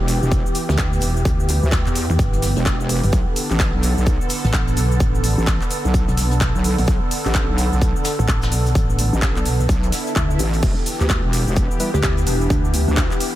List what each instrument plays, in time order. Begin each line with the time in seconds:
Already playing: analog synth pad E3 B3 G4
0.00 wobble bass E1
0.08 open hi-hat, cabasa, shaker
0.22 wobble bass E1, cabasa
0.32 kick, cabasa, shaker
0.46 cabasa
0.55 open hi-hat, cabasa, shaker
0.69 wobble bass D2, snare, cabasa
0.78 wobble bass D2, kick, snare, clap, cabasa, shaker
0.93 closed hi-hat, cabasa
1.01 wobble bass E1, open hi-hat, cabasa, shaker
1.16 cabasa
1.25 wobble bass D2, kick, cabasa, shaker
1.40 cabasa
1.49 open hi-hat, cabasa, shaker
1.63 wobble bass D2, cabasa
1.72 kick, snare, clap, cabasa, shaker
1.86 wobble bass E2, clap, cabasa
1.95 open hi-hat, cabasa, shaker
2.10 wobble bass E2, cabasa
2.19 wobble bass G1, kick, cabasa, shaker
2.33 closed hi-hat, cabasa
2.42 snare, open hi-hat, cabasa, shaker
2.56 wobble bass E1, closed hi-hat, cabasa
2.66 kick, snare, clap, cabasa, shaker
2.81 cabasa
2.89 open hi-hat, cabasa, shaker
3.03 wobble bass G1, open hi-hat, cabasa
3.12 wobble bass B1, analog synth pad D3 A4, kick, cabasa, shaker
3.36 open hi-hat, cabasa, shaker
3.50 wobble bass A1, clap, cabasa
3.59 kick, snare, clap, cabasa, shaker
3.74 wobble bass B1
3.83 open hi-hat, cabasa, shaker
3.97 wobble bass B1, cabasa
4.06 kick, cabasa, shaker
4.21 cabasa
4.29 open hi-hat, cabasa, shaker
4.44 wobble bass A1, snare, cabasa
4.53 wobble bass A1, kick, snare, clap, cabasa, shaker
4.67 closed hi-hat, cabasa
4.77 wobble bass B1, open hi-hat, cabasa, shaker
4.92 cabasa
5.00 wobble bass A1, kick, cabasa, shaker
5.15 cabasa
5.24 open hi-hat, cabasa, shaker
5.38 wobble bass A1, cabasa
5.46 kick, snare, clap, cabasa, shaker
5.61 clap, cabasa
5.70 open hi-hat, cabasa, shaker
5.85 wobble bass B1, cabasa
5.94 kick, cabasa, shaker
6.08 wobble bass B1, closed hi-hat, cabasa
6.17 snare, open hi-hat, cabasa, shaker
6.31 closed hi-hat, cabasa
6.41 kick, snare, clap, cabasa, shaker
6.55 wobble bass B1, cabasa
6.64 open hi-hat, cabasa, shaker
6.78 wobble bass B1, open hi-hat, cabasa
6.87 wobble bass B1, kick, cabasa, shaker
7.11 open hi-hat, cabasa, shaker
7.25 wobble bass A1, clap, cabasa
7.34 kick, snare, clap, cabasa, shaker
7.49 wobble bass B1
7.58 open hi-hat, cabasa, shaker
7.72 wobble bass B1, cabasa
7.82 kick, cabasa, shaker
7.96 cabasa
8.05 snare, open hi-hat, cabasa, shaker
8.19 wobble bass A1, cabasa
8.28 wobble bass A1, kick, clap, cabasa, shaker
8.42 snare, cabasa, shaker
8.52 wobble bass B1, open hi-hat, cabasa
8.66 cabasa, shaker
8.75 wobble bass A1, kick, cabasa, shaker
8.90 cabasa
8.99 open hi-hat, cabasa, shaker
9.13 wobble bass A1, cabasa
9.22 kick, snare, clap, cabasa, shaker
9.36 wobble bass B1, clap, cabasa
9.45 open hi-hat, cabasa, shaker
9.60 cabasa
9.69 wobble bass B1, kick, swell, cabasa, shaker
9.83 closed hi-hat, cabasa
9.92 snare, open hi-hat, cabasa, shaker
10.07 closed hi-hat, cabasa
10.16 wobble bass D2, kick, clap, cabasa
10.30 cabasa
10.39 wobble bass A1, open hi-hat, cabasa, shaker
10.53 open hi-hat, cabasa
10.63 wobble bass E1, analog synth pad E3 B3 G4, kick, crash, cabasa, shaker
10.86 open hi-hat, cabasa, shaker
11.00 wobble bass D2, digital synth lead G4, clap, cabasa
11.10 kick, snare, clap, cabasa, shaker
11.24 wobble bass E1
11.33 open hi-hat, cabasa, shaker
11.47 wobble bass E1, cabasa
11.56 kick, cabasa, shaker
11.71 cabasa
11.80 synth stab G3 B3 E4 B4, open hi-hat, cabasa, shaker
11.94 wobble bass D2, digital synth lead G4, snare, cabasa
12.03 wobble bass D2, digital synth lead G4, kick, snare, clap, cabasa, shaker
12.17 closed hi-hat, cabasa
12.27 wobble bass E1, digital synth lead D4, open hi-hat, cabasa, shaker
12.41 cabasa
12.50 wobble bass D2, kick, cabasa, shaker
12.65 cabasa
12.74 open hi-hat, cabasa, shaker
12.88 wobble bass D2, digital synth lead D4, cabasa
12.97 kick, snare, clap, cabasa, shaker
13.11 clap, cabasa
13.20 open hi-hat, cabasa, shaker